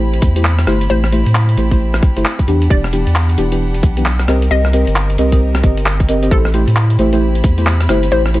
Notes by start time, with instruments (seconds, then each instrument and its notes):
Already playing: sub bass A1, synth stab A3 E4 G4 C5, violin section C4 E4 G4 B5
0.14 closed hi-hat
0.22 sub bass E2, kick, closed hi-hat
0.36 synth stab A3 E4 G4 C5, closed hi-hat
0.45 clap
0.59 cross-stick, closed hi-hat
0.67 sub bass G1, synth stab A3 E4 G4 C5, cross-stick, closed hi-hat
0.81 closed hi-hat
0.90 sub bass A1, synth stab A3 E4 G4 C5, synth pluck C5
1.04 cross-stick
1.12 synth stab A3 E4 G4 C5, closed hi-hat
1.26 sub bass A2, closed hi-hat
1.35 clap
1.49 closed hi-hat
1.57 sub bass A1, synth stab A3 E4 G4 C5, closed hi-hat
1.71 synth stab A3 E4 G4 C5, kick, closed hi-hat
1.94 cross-stick, closed hi-hat
2.03 kick, closed hi-hat
2.17 sub bass G1, synth stab A3 E4 G4 C5, closed hi-hat
2.25 clap
2.39 kick, closed hi-hat
2.48 sub bass E2, synth stab E3 B3 D4 G4, violin section D4 F#5, closed hi-hat
2.62 closed hi-hat
2.70 sub bass E1, synth stab E3 B3 D4 G4, synth pluck D5, kick
2.84 cross-stick
2.93 synth stab E3 B3 D4 G4, closed hi-hat
3.07 sub bass E2, closed hi-hat
3.15 clap
3.29 closed hi-hat
3.38 sub bass E1, synth stab E3 B3 D4 G4, closed hi-hat
3.52 synth stab E3 B3 D4 G4, closed hi-hat
3.74 closed hi-hat
3.83 sub bass B1, kick, closed hi-hat
3.97 synth stab E3 B3 D4 G4, closed hi-hat
4.06 clap
4.19 cross-stick, closed hi-hat
4.28 sub bass C2, synth stab C4 G4 A#4 D#5, violin section C4 D#4 A#4, cross-stick, closed hi-hat
4.42 closed hi-hat
4.51 sub bass C2, synth stab C4 G4 A#4 D#5, synth pluck D#5
4.65 cross-stick
4.73 synth stab C4 G4 A#4 D#5, closed hi-hat
4.87 sub bass G1, closed hi-hat
4.96 clap
5.10 closed hi-hat
5.18 sub bass C2, synth stab C4 G4 A#4 D#5, closed hi-hat
5.32 synth stab C4 G4 A#4 D#5, kick, closed hi-hat
5.55 cross-stick, closed hi-hat
5.63 sub bass G1, synth stab C4 G4 A#4 D#5, kick, closed hi-hat
5.77 closed hi-hat
5.86 clap
6.00 kick, closed hi-hat
6.09 synth stab C4 G4 A#4 D#5, closed hi-hat
6.23 synth stab C4 G4 A#4 D#5, closed hi-hat
6.31 sub bass A1, synth stab A3 E4 G4 C5, violin section C4 E4 B5, synth pluck A4, kick
6.45 cross-stick
6.54 synth stab A3 E4 G4 C5, closed hi-hat
6.68 sub bass A2, closed hi-hat
6.76 clap
6.90 closed hi-hat
6.99 sub bass A1, synth stab A3 E4 G4 C5, closed hi-hat
7.13 synth stab A3 E4 G4 C5, closed hi-hat
7.35 closed hi-hat
7.44 sub bass E2, kick, closed hi-hat
7.58 synth stab A3 E4 G4 C5, closed hi-hat
7.67 clap
7.80 cross-stick, closed hi-hat
7.89 sub bass G1, synth stab A3 E4 G4 C5, cross-stick, closed hi-hat
8.03 closed hi-hat
8.12 sub bass A1, synth stab A3 E4 G4 C5, synth pluck C5
8.26 cross-stick
8.34 synth stab A3 E4 G4 C5, closed hi-hat